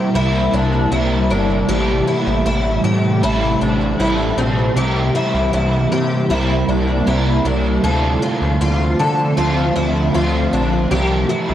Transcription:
Already playing: C3 G3 A#3 C4 E4 G4 A#4
0.14 C2 G3 C4 E4 A#4
0.54 C2 D4
0.91 C2 G3 C4 E4 A#4
1.30 G1 D4
1.67 A1 A2 C3 E3 G3 A3 C4 G4
1.71 E4 A4
2.07 E4
2.26 A1
2.46 A1 E4
2.84 A2 G4
3.21 A1 G3 C4 E4 A4
3.61 A1 D4
3.98 A1 G3 C4 E4 A4
4.37 A#1 C4
4.74 C2 C3 E3 G3 A#3 C4 E4 G4
4.79 E4 A#4
5.15 E4
5.34 C2
5.53 C2 E4
5.91 C3 G4
6.29 C2 G3 C4 E4 A#4
6.68 C2 D4
7.06 C2 G3 C4 E4 A#4
7.45 C2 D4
7.82 D2 D3 F3 A3 C4 A4
7.87 F4 C5
8.22 F4
8.41 D2
8.61 D2 F4
8.99 D3 A4
9.37 D2 A3 C4 F4 C5
9.76 D2 E4
10.13 D2 A3 C4 F4 C5
10.53 A#1 D4
10.90 C2 C3 E3 G3 A#3 C4 E4 G4
10.94 E4 A#4
11.30 E4
11.50 C2

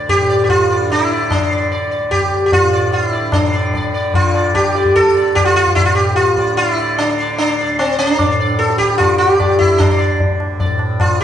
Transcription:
Already playing: D2 A2 D3
0.09 G4, tabla tin, tabla ge
0.16 A2
0.30 D5
0.44 G4
0.49 F4, tabla tin, tabla ge
0.70 D5
0.76 D3
0.90 E4, tabla te
1.12 D5
1.30 D4, tabla na, tabla ge
1.39 D3
1.52 D5
1.72 D5
1.91 D5
1.98 D2
2.11 G4, tabla tin, tabla ge
2.46 G4
2.52 F4, tabla tin, tabla ge
2.61 A2
2.73 D5
2.92 F4, tabla te
3.05 E4
3.13 D5
3.20 D3
3.32 A2 D4, tabla na, tabla ge
3.54 D5
3.74 D5, tabla tin, tabla ge
3.94 D3 D5
4.14 F4, tabla tin, tabla ge
4.34 D5, tabla na
4.54 D3 G4, tabla na, tabla ge
4.75 D5, tabla te
4.85 tabla ge
4.95 A4, tabla tin, tabla ge
5.17 D2 D5
5.35 G4, tabla na, tabla ge
5.45 F4
5.56 F4, tabla te
5.67 tabla ge
5.75 A2 E4, tabla tin, tabla ge
5.85 F4
5.95 G4
6.16 F4, tabla te
6.27 tabla te
6.37 D3 D5, tabla ke
6.48 tabla te
6.57 F4, tabla tin
6.69 E4
6.80 D5
6.98 D3 D4, tabla na
7.21 D5
7.38 D4, tabla tin
7.61 D2 D5
7.79 C4, tabla na
7.99 D4
8.19 A2 D5, tabla na, tabla ge
8.40 D5
8.59 A4, tabla te
8.70 tabla te
8.78 G4, tabla ke
8.82 D3
8.90 tabla te
8.98 F4, tabla na, tabla ge
9.18 G4
9.40 D5, tabla na, tabla ge
9.44 D3
9.59 E4, tabla ge
9.78 D4, tabla na, tabla ge
9.98 D5
10.04 D2
10.20 tabla tin, tabla ge
10.40 tabla na
10.60 D5, tabla tin, tabla ge
10.65 A2
10.79 tabla na
11.00 F4, tabla na, tabla ge
11.20 G4, tabla te

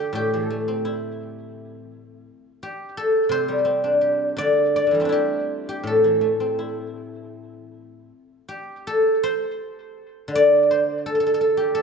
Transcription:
Already playing: D3 G4 A4 C5 D5
0.13 A2 G4
0.34 E3 G#4
0.46 A4
0.50 A3
0.68 C4
0.85 E4
2.63 G4
2.97 A4
3.29 C3 C5
3.48 G3
3.65 C4
3.84 D4
4.01 G4
4.37 D3 D5
4.76 D5
4.87 D3
4.91 E3 G3
5.00 A3 C4
5.05 D4 E4
5.12 G4
5.69 G4
5.83 A2 A4
6.04 E3
6.21 A3
6.40 C4
6.59 E4
8.48 G4
8.87 A4
9.23 C5
10.28 D3
10.35 D5
10.71 C5
11.06 A4
11.15 A4
11.20 A4
11.27 A4
11.34 A4
11.41 A4
11.57 G4
11.75 A4

